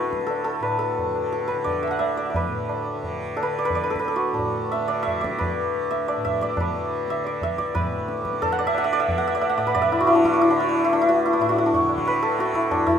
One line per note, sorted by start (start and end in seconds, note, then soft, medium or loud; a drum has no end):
0.00 0.14 D2 medium
0.00 0.60 A2 medium
0.00 1.10 D3 medium
0.00 2.35 E4 medium
0.00 2.65 F#4 medium
0.00 0.26 A4 medium
0.00 0.62 B4 medium
0.00 0.59 D5 medium
0.05 tabla te medium
0.13 2.00 D2 medium
0.13 tabla ke medium
0.21 tabla te medium
0.27 0.44 A4 medium
0.27 tabla tin medium
0.44 0.78 A4 medium
0.44 tabla na soft
0.60 2.48 A2 medium
0.60 1.47 B4 medium
0.60 tabla na medium
0.79 1.32 A4 medium
0.98 tabla tin medium
0.98 tabla ge medium
1.10 1.53 D3 medium
1.16 tabla na medium
1.32 3.36 A4 medium
1.32 tabla te medium
1.41 tabla te medium
1.48 2.35 B4 medium
1.48 tabla ke soft
1.53 2.95 D3 medium
1.58 tabla te medium
1.64 2.17 D5 medium
1.64 tabla tin medium
1.64 tabla ge medium
1.83 1.99 E5 medium
1.87 2.25 F#5 medium
1.87 2.22 A5 medium
1.99 3.89 D2 medium
1.99 2.29 E5 medium
1.99 tabla na medium
2.17 2.30 D5 medium
2.17 4.01 B5 soft
2.22 4.41 F#5 soft
2.22 4.15 A5 soft
2.30 3.58 D5 soft
2.30 4.59 E5 soft
2.34 3.42 B4 medium
2.34 tabla tin medium
2.34 tabla ge medium
2.48 4.33 A2 medium
2.69 tabla na medium
2.86 tabla na medium
2.95 3.42 D3 medium
3.03 tabla tin medium
3.03 tabla ge medium
3.37 3.90 A4 medium
3.37 tabla na medium
3.42 4.80 D3 medium
3.42 3.65 B4 medium
3.53 tabla na medium
3.59 3.75 D5 medium
3.65 3.83 B4 medium
3.70 tabla tin medium
3.70 tabla ge medium
3.75 4.87 D5 medium
3.84 3.99 B4 medium
3.84 tabla na medium
3.89 5.73 D2 medium
3.89 4.08 A4 medium
3.96 5.38 B4 medium
3.96 tabla ke medium
4.05 7.01 A4 medium
4.05 tabla na medium
4.16 7.42 F#4 medium
4.33 6.16 A2 medium
4.33 8.07 D4 medium
4.38 tabla tin medium
4.38 tabla ge medium
4.72 5.02 E5 medium
4.72 tabla te medium
4.80 5.26 D3 medium
4.88 5.21 D5 medium
4.88 tabla na medium
5.03 5.90 E5 loud
5.07 tabla tin medium
5.07 tabla ge medium
5.21 6.08 D5 medium
5.21 tabla ke medium
5.26 6.62 D3 medium
5.38 6.60 B4 medium
5.38 tabla na medium
5.38 tabla ge medium
5.73 7.54 D2 medium
5.91 6.24 E5 medium
5.91 tabla te medium
6.08 6.42 D5 medium
6.08 tabla na medium
6.16 7.75 A2 medium
6.25 7.10 E5 medium
6.25 tabla tin medium
6.25 tabla ge medium
6.41 7.26 D5 medium
6.41 tabla ke medium
6.57 7.74 B4 medium
6.57 tabla na medium
6.57 tabla ge medium
6.62 7.10 D3 medium
7.08 8.21 D3 medium
7.08 7.43 E5 medium
7.08 tabla te medium
7.24 7.58 D5 medium
7.24 tabla na medium
7.41 8.66 E5 medium
7.41 tabla tin medium
7.41 tabla ge medium
7.55 9.10 D2 medium
7.55 8.58 D5 medium
7.59 tabla ke medium
7.75 9.56 A2 medium
7.75 9.66 B4 medium
7.75 tabla tin loud
7.75 tabla ge loud
8.08 tabla te medium
8.17 8.65 D3 medium
8.17 tabla te medium
8.25 tabla ke medium
8.33 tabla te medium
8.42 11.35 A4 loud
8.42 tabla tin medium
8.42 tabla ge medium
8.52 8.77 F#5 loud
8.59 8.92 D5 medium
8.59 tabla na medium
8.65 10.02 D3 medium
8.65 8.84 E5 loud
8.75 9.17 F#5 loud
8.75 tabla na medium
8.84 8.99 E5 loud
8.93 9.34 D5 loud
9.00 9.27 E5 medium
9.09 10.95 D2 medium
9.09 tabla tin medium
9.09 tabla ge medium
9.18 9.49 F#5 medium
9.27 9.41 E5 medium
9.35 9.57 D5 medium
9.41 9.81 E5 medium
9.41 tabla na medium
9.49 11.65 F#5 medium
9.56 11.39 A2 medium
9.56 9.74 D5 medium
9.67 12.07 B4 medium
9.75 12.21 D5 loud
9.75 tabla tin medium
9.75 tabla ge medium
9.82 12.11 E5 loud
9.92 10.06 E4 medium
9.92 tabla na medium
10.01 10.49 D3 medium
10.01 10.33 F#4 medium
10.07 10.25 E4 medium
10.07 tabla te medium
10.15 10.50 D4 medium
10.15 tabla te medium
10.24 10.41 E4 medium
10.24 tabla ke medium
10.33 10.68 F#4 medium
10.33 tabla te medium
10.41 10.60 E4 loud
10.41 tabla tin medium
10.49 11.83 D3 medium
10.49 10.92 D4 medium
10.59 10.84 E4 medium
10.59 tabla na medium
10.69 11.08 F#4 medium
10.75 tabla na medium
10.84 11.01 E4 medium
10.93 12.72 D2 medium
10.93 11.33 D4 medium
11.02 11.25 E4 medium
11.08 11.49 F#4 medium
11.08 tabla tin medium
11.26 11.41 E4 medium
11.33 11.66 D4 medium
11.39 12.99 A2 medium
11.39 11.58 E4 medium
11.39 tabla na medium
11.49 11.74 F#4 medium
11.58 12.55 E4 medium
11.66 12.71 D4 medium
11.73 12.40 F#4 medium
11.73 tabla tin medium
11.73 tabla ge medium
11.83 12.28 D3 medium
11.89 tabla na medium
11.98 tabla ke medium
12.06 12.99 B4 medium
12.06 tabla na medium
12.22 12.99 A4 loud
12.22 tabla na medium
12.28 12.99 D3 medium
12.39 12.99 F#4 loud
12.39 tabla te medium
12.46 tabla te medium
12.54 12.86 E4 medium
12.54 tabla ke medium
12.62 tabla te medium
12.71 12.99 D2 medium
12.71 12.99 D4 medium
12.71 tabla na medium
12.71 tabla ge medium
12.87 12.99 E4 medium
12.87 tabla ge medium